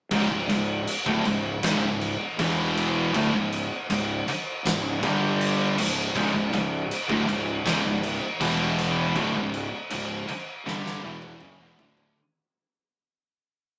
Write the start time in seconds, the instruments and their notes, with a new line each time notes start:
0.11 fingered electric bass C#1, distorted electric guitar C#2 G#2, kick, crash
0.31 fingered electric bass C#1, distorted electric guitar C#2 G#2
0.49 fingered electric bass C#1, distorted electric guitar C#2 G#2, crash
0.87 crash
1.06 fingered electric bass D1, distorted electric guitar D2 A2, kick
1.25 fingered electric bass C#1, distorted electric guitar C#2 G#2, crash
1.63 fingered electric bass C#1, distorted electric guitar C#2 G#2, kick, snare, crash
1.82 fingered electric bass C#1, distorted electric guitar C#2 G#2
2.01 crash
2.39 fingered electric bass E1, distorted electric guitar E2 B2 E3, kick, crash
2.77 crash
3.14 fingered electric bass D1, distorted electric guitar D2 A2, kick, crash
3.33 fingered electric bass C#1, distorted electric guitar C#2 G#2
3.52 crash
3.89 fingered electric bass C#1, distorted electric guitar C#2 G#2, crash
4.27 muted fingered electric bass stroke, muted distorted electric guitar stroke, crash
4.65 fingered electric bass C#1, distorted electric guitar C#2 G#2, snare, crash
5.03 fingered electric bass G1, distorted electric guitar G2 D3 G3, kick, crash
5.41 crash
5.78 fingered electric bass C#1, distorted electric guitar C#2 G#2, crash
6.16 fingered electric bass C#1, distorted electric guitar C#2 G#2, kick, crash
6.34 fingered electric bass C#1, distorted electric guitar C#2 G#2
6.53 fingered electric bass C#1, distorted electric guitar C#2 G#2, crash
6.91 crash
7.09 fingered electric bass D1, distorted electric guitar D2 A2, kick
7.28 fingered electric bass C#1, distorted electric guitar C#2 G#2, crash
7.66 fingered electric bass C#1, distorted electric guitar C#2 G#2, kick, snare, crash
7.84 fingered electric bass C#1, distorted electric guitar C#2 G#2
8.03 crash
8.41 fingered electric bass E1, distorted electric guitar E2 B2 E3, kick, crash
8.78 snare, crash
9.16 fingered electric bass D1, distorted electric guitar D2 A2, kick, crash
9.34 fingered electric bass C#1, distorted electric guitar C#2 G#2
9.54 crash
9.90 fingered electric bass C#1, distorted electric guitar C#2 G#2, crash
10.28 muted distorted electric guitar stroke, muted fingered electric bass stroke, crash
10.66 fingered electric bass G1, distorted electric guitar G2 D3 G3, snare
10.86 snare
11.04 fingered electric bass E1, distorted electric guitar E2 B2 E3
11.22 high tom
11.40 fingered electric bass F#1, distorted electric guitar F#2 C#3, mid tom
11.60 fingered electric bass E1, distorted electric guitar E2 B2
11.79 fingered electric bass D1, distorted electric guitar D2 A2 D3, floor tom
11.97 floor tom